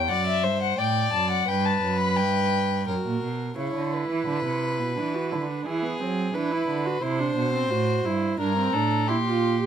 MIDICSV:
0, 0, Header, 1, 5, 480
1, 0, Start_track
1, 0, Tempo, 696864
1, 61, Time_signature, 4, 2, 24, 8
1, 3420, Tempo, 686499
1, 6704, End_track
2, 0, Start_track
2, 0, Title_t, "Violin"
2, 0, Program_c, 0, 40
2, 0, Note_on_c, 0, 79, 84
2, 60, Note_on_c, 0, 78, 81
2, 70, Note_off_c, 0, 79, 0
2, 180, Note_off_c, 0, 78, 0
2, 186, Note_on_c, 0, 76, 88
2, 420, Note_off_c, 0, 76, 0
2, 426, Note_on_c, 0, 78, 84
2, 538, Note_off_c, 0, 78, 0
2, 542, Note_on_c, 0, 79, 83
2, 775, Note_off_c, 0, 79, 0
2, 779, Note_on_c, 0, 81, 86
2, 896, Note_off_c, 0, 81, 0
2, 901, Note_on_c, 0, 78, 82
2, 1021, Note_on_c, 0, 79, 83
2, 1031, Note_off_c, 0, 78, 0
2, 1141, Note_on_c, 0, 81, 82
2, 1151, Note_off_c, 0, 79, 0
2, 1376, Note_off_c, 0, 81, 0
2, 1380, Note_on_c, 0, 83, 82
2, 1498, Note_on_c, 0, 79, 88
2, 1508, Note_off_c, 0, 83, 0
2, 1982, Note_off_c, 0, 79, 0
2, 5815, Note_on_c, 0, 82, 79
2, 6298, Note_on_c, 0, 84, 74
2, 6309, Note_off_c, 0, 82, 0
2, 6704, Note_off_c, 0, 84, 0
2, 6704, End_track
3, 0, Start_track
3, 0, Title_t, "Violin"
3, 0, Program_c, 1, 40
3, 63, Note_on_c, 1, 74, 77
3, 300, Note_on_c, 1, 72, 71
3, 310, Note_off_c, 1, 74, 0
3, 543, Note_on_c, 1, 74, 76
3, 553, Note_off_c, 1, 72, 0
3, 1017, Note_off_c, 1, 74, 0
3, 1021, Note_on_c, 1, 71, 85
3, 1965, Note_off_c, 1, 71, 0
3, 1983, Note_on_c, 1, 70, 58
3, 2436, Note_off_c, 1, 70, 0
3, 2468, Note_on_c, 1, 73, 54
3, 2709, Note_on_c, 1, 71, 63
3, 2719, Note_off_c, 1, 73, 0
3, 3902, Note_off_c, 1, 71, 0
3, 3906, Note_on_c, 1, 68, 70
3, 4382, Note_on_c, 1, 71, 65
3, 4392, Note_off_c, 1, 68, 0
3, 4856, Note_on_c, 1, 72, 81
3, 4866, Note_off_c, 1, 71, 0
3, 5815, Note_off_c, 1, 72, 0
3, 5820, Note_on_c, 1, 70, 73
3, 6053, Note_on_c, 1, 69, 70
3, 6063, Note_off_c, 1, 70, 0
3, 6295, Note_on_c, 1, 67, 75
3, 6305, Note_off_c, 1, 69, 0
3, 6704, Note_off_c, 1, 67, 0
3, 6704, End_track
4, 0, Start_track
4, 0, Title_t, "Viola"
4, 0, Program_c, 2, 41
4, 1983, Note_on_c, 2, 66, 54
4, 2435, Note_off_c, 2, 66, 0
4, 2464, Note_on_c, 2, 64, 65
4, 3401, Note_off_c, 2, 64, 0
4, 3419, Note_on_c, 2, 62, 55
4, 3544, Note_on_c, 2, 66, 58
4, 3555, Note_off_c, 2, 62, 0
4, 3663, Note_on_c, 2, 64, 56
4, 3673, Note_off_c, 2, 66, 0
4, 3780, Note_off_c, 2, 64, 0
4, 3785, Note_on_c, 2, 62, 58
4, 3905, Note_on_c, 2, 64, 67
4, 3915, Note_off_c, 2, 62, 0
4, 4023, Note_on_c, 2, 59, 66
4, 4034, Note_off_c, 2, 64, 0
4, 4145, Note_on_c, 2, 60, 66
4, 4156, Note_off_c, 2, 59, 0
4, 4376, Note_off_c, 2, 60, 0
4, 4381, Note_on_c, 2, 62, 71
4, 4503, Note_on_c, 2, 64, 71
4, 4514, Note_off_c, 2, 62, 0
4, 4741, Note_on_c, 2, 66, 72
4, 4751, Note_off_c, 2, 64, 0
4, 4855, Note_off_c, 2, 66, 0
4, 4860, Note_on_c, 2, 64, 76
4, 4978, Note_on_c, 2, 62, 78
4, 4989, Note_off_c, 2, 64, 0
4, 5212, Note_off_c, 2, 62, 0
4, 5216, Note_on_c, 2, 60, 71
4, 5336, Note_on_c, 2, 66, 75
4, 5346, Note_off_c, 2, 60, 0
4, 5580, Note_on_c, 2, 64, 78
4, 5590, Note_off_c, 2, 66, 0
4, 5816, Note_off_c, 2, 64, 0
4, 5820, Note_on_c, 2, 62, 71
4, 5937, Note_off_c, 2, 62, 0
4, 5940, Note_on_c, 2, 60, 72
4, 6060, Note_on_c, 2, 62, 74
4, 6070, Note_off_c, 2, 60, 0
4, 6296, Note_off_c, 2, 62, 0
4, 6300, Note_on_c, 2, 64, 81
4, 6347, Note_off_c, 2, 64, 0
4, 6420, Note_on_c, 2, 65, 78
4, 6654, Note_off_c, 2, 65, 0
4, 6660, Note_on_c, 2, 67, 80
4, 6704, Note_off_c, 2, 67, 0
4, 6704, End_track
5, 0, Start_track
5, 0, Title_t, "Cello"
5, 0, Program_c, 3, 42
5, 0, Note_on_c, 3, 40, 63
5, 61, Note_on_c, 3, 42, 69
5, 71, Note_off_c, 3, 40, 0
5, 303, Note_on_c, 3, 43, 65
5, 313, Note_off_c, 3, 42, 0
5, 537, Note_off_c, 3, 43, 0
5, 541, Note_on_c, 3, 45, 67
5, 775, Note_off_c, 3, 45, 0
5, 780, Note_on_c, 3, 42, 62
5, 1013, Note_off_c, 3, 42, 0
5, 1017, Note_on_c, 3, 43, 69
5, 1251, Note_off_c, 3, 43, 0
5, 1255, Note_on_c, 3, 42, 67
5, 1496, Note_on_c, 3, 43, 70
5, 1507, Note_off_c, 3, 42, 0
5, 1976, Note_off_c, 3, 43, 0
5, 1981, Note_on_c, 3, 42, 60
5, 2029, Note_off_c, 3, 42, 0
5, 2100, Note_on_c, 3, 46, 60
5, 2217, Note_off_c, 3, 46, 0
5, 2221, Note_on_c, 3, 47, 56
5, 2457, Note_off_c, 3, 47, 0
5, 2463, Note_on_c, 3, 49, 54
5, 2578, Note_off_c, 3, 49, 0
5, 2582, Note_on_c, 3, 50, 61
5, 2816, Note_off_c, 3, 50, 0
5, 2819, Note_on_c, 3, 52, 62
5, 2937, Note_off_c, 3, 52, 0
5, 2941, Note_on_c, 3, 50, 66
5, 3058, Note_off_c, 3, 50, 0
5, 3062, Note_on_c, 3, 48, 58
5, 3302, Note_on_c, 3, 47, 61
5, 3312, Note_off_c, 3, 48, 0
5, 3425, Note_on_c, 3, 52, 68
5, 3435, Note_off_c, 3, 47, 0
5, 3666, Note_on_c, 3, 50, 64
5, 3676, Note_off_c, 3, 52, 0
5, 3902, Note_off_c, 3, 50, 0
5, 3906, Note_on_c, 3, 52, 60
5, 4138, Note_off_c, 3, 52, 0
5, 4146, Note_on_c, 3, 54, 59
5, 4376, Note_off_c, 3, 54, 0
5, 4380, Note_on_c, 3, 52, 60
5, 4614, Note_off_c, 3, 52, 0
5, 4621, Note_on_c, 3, 50, 61
5, 4853, Note_off_c, 3, 50, 0
5, 4858, Note_on_c, 3, 48, 69
5, 5090, Note_off_c, 3, 48, 0
5, 5097, Note_on_c, 3, 47, 66
5, 5331, Note_off_c, 3, 47, 0
5, 5336, Note_on_c, 3, 45, 69
5, 5572, Note_off_c, 3, 45, 0
5, 5579, Note_on_c, 3, 43, 65
5, 5814, Note_off_c, 3, 43, 0
5, 5817, Note_on_c, 3, 43, 69
5, 6053, Note_off_c, 3, 43, 0
5, 6057, Note_on_c, 3, 45, 64
5, 6300, Note_on_c, 3, 46, 67
5, 6311, Note_off_c, 3, 45, 0
5, 6704, Note_off_c, 3, 46, 0
5, 6704, End_track
0, 0, End_of_file